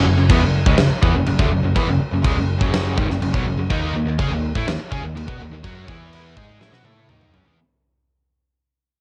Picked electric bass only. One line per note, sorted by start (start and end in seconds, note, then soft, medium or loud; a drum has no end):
0.06 0.17 F#1 medium
0.18 0.29 F#1 medium
0.30 0.41 E2 loud
0.42 0.65 F#1 medium
0.66 0.78 C#2 loud
0.78 0.90 F#1 medium
0.90 muted picked electric bass stroke soft
1.03 1.14 E2 loud
1.15 1.26 F#1 medium
1.27 1.39 F#1 medium
1.39 1.51 D2 loud
1.51 1.63 F#1 loud
1.63 1.75 F#1 medium
1.76 1.87 E2 medium
1.88 1.99 F#1 medium
2.01 muted picked electric bass stroke soft
2.12 2.24 F#1 medium
2.25 2.36 C#2 medium
2.37 2.59 F#1 medium
2.61 2.95 F#1 loud
2.98 3.07 G#1 loud
3.08 3.20 F#1 medium
3.21 3.32 F#1 medium
3.34 3.45 B1 loud
3.45 3.56 F#1 loud
3.57 3.68 F#1 medium
3.71 3.93 D#2 medium
3.94 4.04 D#2 medium
4.05 4.17 D#2 medium
4.19 4.29 C#3 loud
4.29 4.52 D#2 medium
4.55 4.66 A2 loud
4.66 4.78 D#2 loud
4.79 muted picked electric bass stroke soft
4.92 5.01 C#3 loud
5.02 5.14 D#2 medium
5.14 5.26 D#2 medium
5.28 5.39 B2 medium
5.39 5.49 D#2 medium
5.50 5.62 D#2 medium
5.64 5.87 F#2 medium
5.89 6.33 E2 medium
6.37 6.59 G#2 medium
6.60 6.72 A2 loud
6.72 6.83 B2 loud
6.84 7.07 A2 loud
7.09 7.32 D#2 loud
7.33 7.44 F#2 loud
7.45 7.57 E2 loud